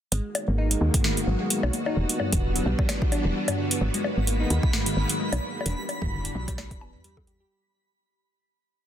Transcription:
0.12 G#1 D#3 G#3 A#3 B3 F#4, closed hi-hat
0.35 closed hi-hat, high bongo
0.48 G#1 A#3
0.58 D#4
0.71 G#3, closed hi-hat
0.81 D#2
0.94 G#2, kick, closed hi-hat
1.04 D#3, snare
1.17 closed hi-hat
1.27 G#1 F#3
1.40 G#3
1.50 closed hi-hat
1.63 B1, high bongo
1.73 A#3, closed hi-hat
1.86 D#4, high bongo
1.97 E1 E3 G3 D4
2.09 closed hi-hat
2.20 G2, high bongo
2.32 E1 D3, kick, closed hi-hat
2.56 F#3, closed hi-hat
2.66 B1 G3
2.79 kick, high bongo
2.89 snare, closed hi-hat, high bongo
3.02 A3, kick
3.12 D4, closed hi-hat, high bongo
3.25 E1 G3
3.48 G2, closed hi-hat, high bongo
3.58 D3
3.71 closed hi-hat
3.81 G#1 D#3 F#3 G#3 A#3 B5
3.94 G#3, closed hi-hat
4.04 high bongo
4.17 G#1
4.27 A#3, closed hi-hat
4.40 D#4
4.50 D#2 G#3, closed hi-hat
4.63 kick
4.73 G#2, snare
4.86 D#3, closed hi-hat
4.97 G#1
5.09 F#3, closed hi-hat
5.20 G#3
5.33 B1, closed hi-hat, high bongo
5.56 A#3
5.61 high bongo
5.66 E1 E3 G3 D4, closed hi-hat
5.79 G3
5.89 closed hi-hat, high bongo
6.02 E1 G2, kick
6.12 D3
6.25 closed hi-hat
6.35 B1 F#3
6.48 G3, kick, closed hi-hat, high bongo
6.58 snare, high bongo
6.71 E1, kick, closed hi-hat
6.81 B3, high bongo
6.94 E2 G2
7.04 G3, closed hi-hat
7.17 kick, high bongo
7.27 G4, closed hi-hat
7.40 G4

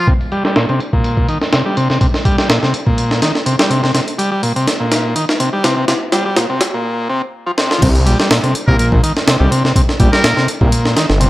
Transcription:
0.07 C3, kick, closed hi-hat
0.21 closed hi-hat
0.32 G3, closed hi-hat
0.45 G3, snare
0.56 A#2, snare, open hi-hat
0.69 C3, closed hi-hat
0.80 closed hi-hat
0.93 A#2, kick
1.04 closed hi-hat
1.17 kick
1.28 D#3, closed hi-hat
1.41 snare
1.53 C3, snare, closed hi-hat
1.66 G3
1.77 C3, closed hi-hat
1.90 C3, snare
2.01 C3, kick, closed hi-hat
2.14 snare
2.25 G3, kick, closed hi-hat
2.38 G3, snare
2.49 A#2, snare, closed hi-hat
2.62 C3, snare
2.74 closed hi-hat
2.87 A#2, kick
2.98 closed hi-hat
3.11 snare
3.22 D#3, snare, closed hi-hat
3.35 snare
3.46 C3, closed hi-hat
3.59 G3, snare
3.70 C3, closed hi-hat
3.83 C3, snare
3.94 C3, snare, closed hi-hat
4.08 closed hi-hat
4.18 G3, closed hi-hat
4.31 G3
4.43 A#2, open hi-hat
4.56 C3, closed hi-hat
4.67 snare, closed hi-hat
4.80 A#2
4.92 snare, closed hi-hat
5.15 D#3, closed hi-hat
5.29 snare
5.40 C3, closed hi-hat
5.53 G3
5.64 C3, snare, closed hi-hat
5.77 C3
5.88 C3, snare, closed hi-hat
6.12 G3, snare, closed hi-hat
6.25 G3
6.36 A#2, snare, closed hi-hat
6.49 C3
6.61 snare, closed hi-hat
6.74 A#2
7.09 C3
7.46 F3
7.58 C3, snare
7.71 F3, snare
7.82 C2 C3, kick, closed hi-hat, crash
7.95 closed hi-hat
8.06 A#1 G3, closed hi-hat
8.19 G3, snare
8.30 A#2, snare, open hi-hat
8.43 C3, closed hi-hat
8.55 closed hi-hat
8.68 C2 A#2 A#4, kick
8.79 A#1 A#4, closed hi-hat
8.92 A#1, kick
9.03 D#3, closed hi-hat
9.17 snare
9.27 C3, snare, closed hi-hat
9.40 C2 G3
9.51 C3, closed hi-hat
9.64 C3, snare
9.76 C3, kick, closed hi-hat
9.89 snare
10.00 A#1 G3, kick, closed hi-hat
10.13 G3 A#4, snare
10.23 A#2, snare, closed hi-hat
10.37 C3, snare
10.48 closed hi-hat
10.61 C2 A#2, kick
10.72 closed hi-hat
10.85 snare
10.96 D#3, snare, closed hi-hat
11.10 G1, snare
11.20 C3, closed hi-hat

